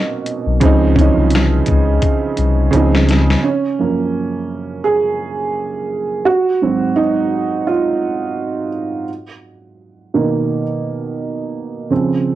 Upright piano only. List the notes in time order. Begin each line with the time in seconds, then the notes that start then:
Already playing: B2 F#3 A#3 C4 C#4
0.60 C#3 F3 C4
0.65 D#4
0.96 E3 C4 C#4
1.01 F3 D#4
2.71 C#3 F3 C4
2.76 D#4
3.43 C#4
3.79 F#2 F3 A#3
4.84 G#4
6.25 F#4
6.62 G#2 F#3 C4
6.96 D#4
7.67 F4
10.14 B2 D#3 A#3
11.90 C#3 F3 C4